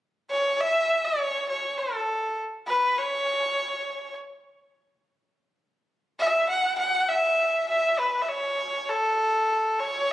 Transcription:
0.31 0.62 C#5 medium
0.60 1.07 E5 medium
1.05 1.49 C#5 medium
1.49 1.80 C#5 medium
1.78 2.39 A4 medium
2.68 2.99 B4 medium
2.98 4.16 C#5 medium
6.20 6.48 E5 medium
6.49 6.77 F#5 medium
6.78 7.10 F#5 medium
7.09 7.68 E5 medium
7.69 8.00 E5 medium
7.99 8.23 B4 medium
8.22 8.30 E5 soft
8.29 8.91 C#5 medium
8.90 9.81 A4 medium
9.80 10.13 C#5 medium

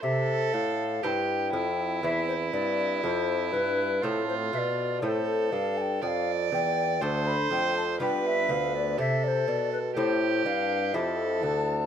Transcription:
0.02 0.49 C3 medium
0.02 0.50 C3 medium
0.02 1.04 A4 loud
0.02 0.55 E5 loud
0.53 0.99 A2 medium
0.53 1.02 A2 medium
0.53 1.05 F5 medium
1.03 1.52 G2 medium
1.03 1.49 G2 medium
1.03 1.99 C4 soft
1.03 2.00 E4 medium
1.03 1.52 G4 medium
1.03 1.08 A5 medium
1.07 2.03 G5 loud
1.52 2.02 F2 medium
1.52 1.99 F2 medium
1.52 4.04 E4 medium
2.03 2.52 E2 medium
2.03 2.49 E2 medium
2.03 2.99 C4 soft
2.03 3.00 E4 soft
2.03 2.28 E5 loud
2.28 2.34 C5 medium
2.53 3.02 G2 medium
2.53 2.99 G2 medium
2.53 3.02 D5 medium
3.03 3.55 F2 medium
3.03 3.49 F2 medium
3.03 3.54 C5 loud
3.53 4.03 G2 medium
3.53 4.00 G2 medium
3.53 4.05 B4 medium
4.02 4.49 A2 medium
4.02 4.52 A2 medium
4.02 4.49 A3 medium
4.02 4.49 C4 soft
4.02 5.02 F4 medium
4.02 4.28 A4 medium
4.02 4.99 A4 medium
4.29 4.35 C5 medium
4.53 4.98 B2 medium
4.53 5.02 B2 medium
4.53 4.59 E5 medium
4.58 5.04 D5 medium
5.02 5.48 A2 medium
5.02 5.51 A2 medium
5.02 5.48 A3 medium
5.02 5.48 C4 soft
5.02 6.03 A4 medium
5.02 5.98 A4 soft
5.02 5.53 C5 medium
5.52 6.01 G2 medium
5.52 5.98 G2 medium
5.52 5.79 F5 loud
5.78 6.02 G5 medium
5.78 5.82 A5 medium
6.02 6.51 F2 medium
6.02 6.48 F2 medium
6.02 7.03 D5 medium
6.02 6.08 G5 medium
6.07 6.31 F5 loud
6.52 6.98 E2 medium
6.52 7.03 E2 medium
6.52 7.04 G5 loud
7.01 7.36 D2 medium
7.01 7.47 D2 medium
7.01 7.96 A3 medium
7.01 7.96 D4 soft
7.01 7.97 A4 medium
7.01 8.00 C5 medium
7.01 7.29 A5 medium
7.27 7.51 B5 loud
7.51 7.96 F2 medium
7.51 7.99 F2 medium
7.51 7.76 G5 medium
7.77 7.83 A5 loud
8.00 8.45 G2 medium
8.00 8.51 G2 medium
8.00 8.94 B3 soft
8.00 8.95 F4 soft
8.00 8.95 G4 soft
8.00 9.00 B4 medium
8.00 8.28 G5 medium
8.27 8.53 E5 loud
8.49 8.94 D2 medium
8.49 9.00 D2 medium
8.49 8.76 F5 medium
8.75 8.99 D5 loud
8.98 9.43 C3 medium
8.98 9.47 C3 medium
8.98 9.95 A4 medium
8.98 9.25 E5 loud
9.24 9.29 D5 medium
9.28 9.50 C5 medium
9.48 9.98 B2 medium
9.48 9.93 B2 medium
9.48 9.72 D5 loud
9.73 9.79 B4 medium
9.96 10.41 A2 medium
9.96 10.44 A2 medium
9.96 10.90 C4 medium
9.96 10.90 E4 medium
9.96 10.96 G4 medium
9.96 10.91 G4 medium
9.96 10.48 C5 loud
10.45 10.96 G2 medium
10.45 10.90 G2 medium
10.45 10.96 F5 loud
10.94 11.39 F2 medium
10.94 11.45 F2 medium
10.94 11.86 C4 soft
10.94 11.86 E4 medium
10.94 11.86 G4 medium
10.94 11.86 A4 medium
10.94 11.45 E5 medium
11.43 11.86 D2 medium
11.43 11.86 A5 loud

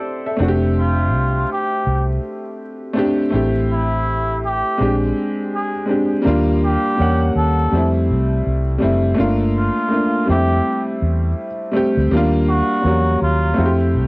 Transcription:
0.00 0.42 G4 medium
0.00 0.23 A4 medium
0.00 0.42 C5 medium
0.00 0.22 D5 medium
0.26 0.61 A4 medium
0.26 0.61 E5 medium
0.37 1.14 F1 medium
0.37 1.46 A3 medium
0.37 1.47 C4 medium
0.37 1.48 D4 medium
0.42 0.49 F#4 medium
0.48 1.52 G4 medium
0.79 1.47 F4 medium
1.14 1.44 C2 medium
1.52 2.06 G4 medium
1.87 2.17 C2 medium
2.93 3.24 A3 medium
2.93 3.24 C4 medium
2.93 3.25 D4 medium
2.99 3.26 G4 loud
3.30 4.61 A1 medium
3.30 4.39 A3 medium
3.30 4.40 C4 medium
3.30 4.41 E4 medium
3.35 4.42 G4 medium
3.72 4.40 E4 medium
4.45 4.99 G4 medium
4.78 5.11 A#1 medium
4.78 5.69 G#3 medium
4.78 5.70 C4 medium
4.78 5.71 D4 medium
4.83 5.72 G4 medium
5.55 5.87 G#4 medium
5.86 6.16 G#3 medium
5.86 6.17 C4 medium
5.86 6.18 D4 medium
5.91 6.19 G4 medium
6.22 6.81 G3 medium
6.22 6.82 A#3 medium
6.22 6.83 D4 medium
6.26 6.75 D#2 medium
6.26 6.84 F4 medium
6.65 7.33 G4 medium
6.97 7.30 E2 loud
6.97 7.70 G3 medium
6.97 7.72 A#3 medium
6.97 7.73 C#4 medium
7.02 7.73 F#5 medium
7.36 7.66 D#2 medium
7.36 7.92 A4 medium
7.71 8.11 F2 medium
7.71 8.62 G3 medium
7.71 8.63 A3 medium
7.71 8.64 C4 medium
7.77 8.65 E4 medium
8.10 8.40 C2 medium
8.46 8.77 C2 medium
8.78 9.09 G3 medium
8.78 9.10 A3 medium
8.78 9.10 C4 medium
8.83 9.13 F#1 medium
8.83 9.11 E4 medium
9.14 9.73 A3 medium
9.14 9.74 A#3 medium
9.14 9.75 D4 medium
9.19 9.68 G1 medium
9.19 9.76 F4 medium
9.57 10.25 F4 medium
9.88 10.26 A3 medium
9.88 10.27 A#3 medium
9.88 10.28 D4 medium
9.93 10.29 F4 medium
10.26 10.59 F2 medium
10.26 11.45 G3 medium
10.26 11.46 A3 medium
10.26 11.47 C4 medium
10.30 11.48 E4 medium
10.30 10.84 G4 medium
11.02 11.32 E2 loud
11.71 12.02 G3 medium
11.71 12.02 A3 medium
11.71 12.03 C4 medium
11.76 12.04 G4 loud
11.97 12.09 D2 medium
12.11 12.61 D#2 loud
12.11 12.68 G3 medium
12.11 12.69 A#3 medium
12.11 12.70 D4 medium
12.16 12.71 F4 loud
12.49 13.17 F#4 medium
12.81 13.15 E2 loud
12.81 12.85 F#3 medium
12.81 13.57 A#3 medium
12.81 13.58 C#4 medium
12.87 13.59 F#3 medium
12.87 13.59 G3 medium
13.22 13.52 D#2 medium
13.22 13.76 F4 medium
13.54 13.96 F2 loud
13.54 14.07 A3 medium
13.54 14.07 C4 medium
13.54 14.07 E4 medium
13.59 13.66 F#4 medium
13.66 14.07 G4 medium
13.95 14.07 C2 medium

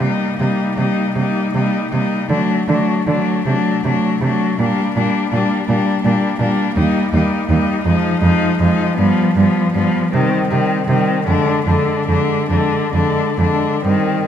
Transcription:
0.00 0.08 C3 soft
0.00 0.39 G3 soft
0.00 0.37 A#3 soft
0.00 0.39 D#4 soft
0.38 0.48 C3 soft
0.38 0.78 G3 soft
0.38 0.77 A#3 soft
0.38 0.76 D#4 soft
0.77 0.86 C3 soft
0.77 1.17 G3 soft
0.77 1.15 A#3 soft
0.77 1.15 D#4 soft
1.15 1.23 C3 soft
1.15 1.54 G3 soft
1.15 1.54 A#3 soft
1.15 1.54 D#4 soft
1.55 1.63 C3 soft
1.55 1.92 G3 soft
1.55 1.92 A#3 soft
1.55 1.92 D#4 soft
1.92 2.01 C3 soft
1.92 2.30 G3 soft
1.92 2.30 A#3 soft
1.92 2.29 D#4 soft
2.30 2.38 D3 soft
2.30 2.69 F#3 soft
2.30 2.67 A3 soft
2.30 2.68 D4 soft
2.68 2.76 D3 soft
2.68 3.08 F#3 soft
2.68 3.06 A3 soft
2.68 3.07 D4 soft
3.07 3.15 D3 soft
3.07 3.47 F#3 soft
3.07 3.46 A3 soft
3.07 3.46 D4 soft
3.46 3.54 C3 soft
3.46 3.86 F#3 soft
3.46 3.84 A3 soft
3.46 3.85 D4 soft
3.84 3.92 C3 soft
3.84 4.23 F#3 soft
3.84 4.22 A3 soft
3.84 4.22 D4 soft
4.21 4.29 C3 soft
4.21 4.57 A3 soft
4.21 4.59 D4 soft
4.25 4.60 F#3 soft
4.58 4.67 A#2 soft
4.58 4.96 G3 soft
4.58 4.95 A#3 soft
4.58 4.95 D4 soft
4.96 5.04 A#2 soft
4.96 5.32 G3 soft
4.96 5.31 A#3 soft
4.96 5.31 D4 soft
5.31 5.41 A#2 soft
5.31 5.68 G3 soft
5.31 5.68 A#3 soft
5.31 5.67 D4 soft
5.68 5.77 A#2 soft
5.68 6.04 G3 soft
5.68 6.03 A#3 soft
5.68 6.03 D4 soft
6.04 6.13 A#2 soft
6.04 6.40 G3 soft
6.04 6.39 A#3 soft
6.04 6.39 D4 soft
6.39 6.48 A#2 soft
6.39 6.77 G3 soft
6.39 6.76 A#3 soft
6.39 6.75 D4 soft
6.76 6.85 D#2 soft
6.76 7.14 G3 soft
6.76 7.13 A#3 soft
6.76 7.13 D#4 soft
7.13 7.21 D#2 soft
7.13 7.50 G3 soft
7.13 7.49 A#3 soft
7.13 7.49 D#4 soft
7.49 7.58 D#2 soft
7.49 7.86 G3 soft
7.49 7.85 A#3 soft
7.49 7.86 D#4 soft
7.85 7.93 F2 soft
7.85 8.23 F3 soft
7.85 8.21 G#3 soft
7.85 8.22 D#4 soft
8.21 8.30 F2 soft
8.21 8.59 F3 soft
8.21 8.58 G#3 soft
8.21 8.59 D#4 soft
8.59 8.68 F2 soft
8.59 8.98 F3 soft
8.59 8.97 G#3 soft
8.59 8.96 D#4 soft
8.97 9.06 G2 soft
8.97 9.37 F3 soft
8.97 9.35 G3 soft
8.97 9.35 B3 soft
9.35 9.44 G2 soft
9.35 9.75 F3 soft
9.35 9.73 G3 soft
9.35 9.74 B3 soft
9.74 9.83 G2 soft
9.74 10.12 F3 soft
9.74 10.12 G3 soft
9.74 10.12 B3 soft
10.13 10.22 C3 soft
10.13 10.49 D#3 soft
10.13 10.49 G3 soft
10.13 10.50 C4 soft
10.49 10.59 C3 soft
10.49 10.87 D#3 soft
10.49 10.87 G3 soft
10.49 10.88 C4 soft
10.88 10.96 C3 soft
10.88 11.27 D#3 soft
10.88 11.27 G3 soft
10.88 11.26 C4 soft
11.26 11.35 F2 soft
11.26 11.67 D3 soft
11.26 11.66 G#3 soft
11.26 11.65 D4 soft
11.65 11.75 F2 soft
11.65 12.08 D3 soft
11.65 12.07 G#3 soft
11.65 12.07 D4 soft
12.08 12.16 F2 soft
12.08 12.50 D3 soft
12.08 12.50 G#3 soft
12.08 12.49 D4 soft
12.50 12.58 F2 soft
12.50 12.93 D3 soft
12.50 12.93 G#3 soft
12.50 12.93 D4 soft
12.94 13.02 F2 soft
12.94 13.38 D3 soft
12.94 13.37 G#3 soft
12.94 13.38 D4 soft
13.38 13.46 F2 soft
13.38 13.84 D3 soft
13.38 13.84 G#3 soft
13.38 13.85 D4 soft
13.85 13.93 G2 soft
13.85 14.27 D#3 soft
13.85 14.27 G3 soft
13.85 14.27 C4 soft

